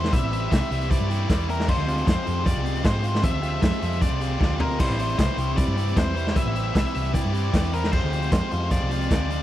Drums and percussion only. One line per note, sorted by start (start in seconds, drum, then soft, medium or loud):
0.04 snare medium
0.13 kick loud
0.13 closed hi-hat loud
0.33 closed hi-hat medium
0.52 kick loud
0.52 snare loud
0.52 closed hi-hat loud
0.72 closed hi-hat medium
0.81 closed hi-hat soft
0.91 kick loud
0.91 closed hi-hat medium
1.11 closed hi-hat medium
1.30 kick loud
1.30 snare loud
1.30 closed hi-hat loud
1.40 closed hi-hat soft
1.50 closed hi-hat medium
1.60 snare medium
1.68 kick loud
1.68 crash loud
1.88 closed hi-hat medium
1.98 closed hi-hat soft
2.07 kick loud
2.07 snare loud
2.07 closed hi-hat loud
2.27 closed hi-hat medium
2.46 kick loud
2.46 closed hi-hat loud
2.66 closed hi-hat medium
2.75 closed hi-hat soft
2.84 kick loud
2.84 snare loud
2.84 closed hi-hat medium
3.04 closed hi-hat medium
3.15 snare medium
3.23 kick loud
3.23 closed hi-hat loud
3.43 closed hi-hat medium
3.62 kick loud
3.62 snare loud
3.62 closed hi-hat medium
3.82 closed hi-hat medium
3.92 closed hi-hat soft
4.02 kick loud
4.02 closed hi-hat medium
4.21 closed hi-hat medium
4.41 kick loud
4.41 snare medium
4.60 floor tom medium
4.80 kick loud
4.80 splash medium
4.80 crash loud
4.99 closed hi-hat medium
5.09 closed hi-hat soft
5.19 kick loud
5.19 snare loud
5.19 closed hi-hat loud
5.38 closed hi-hat medium
5.57 kick loud
5.57 closed hi-hat loud
5.78 closed hi-hat medium
5.88 closed hi-hat soft
5.97 kick loud
5.97 snare loud
5.97 closed hi-hat medium
6.17 closed hi-hat medium
6.27 snare medium
6.36 kick loud
6.36 closed hi-hat loud
6.56 closed hi-hat medium
6.75 kick loud
6.75 snare loud
6.75 closed hi-hat medium
6.95 closed hi-hat medium
7.04 closed hi-hat soft
7.14 kick loud
7.14 closed hi-hat medium
7.34 closed hi-hat medium
7.54 kick loud
7.54 snare loud
7.54 closed hi-hat medium
7.73 closed hi-hat medium
7.84 snare medium
7.93 kick loud
7.93 crash loud
8.13 closed hi-hat medium
8.22 closed hi-hat soft
8.32 kick loud
8.32 snare loud
8.32 closed hi-hat loud
8.51 closed hi-hat medium
8.71 kick loud
8.71 closed hi-hat loud
8.91 closed hi-hat medium
9.01 closed hi-hat soft
9.11 kick loud
9.11 snare loud
9.11 closed hi-hat loud
9.31 closed hi-hat medium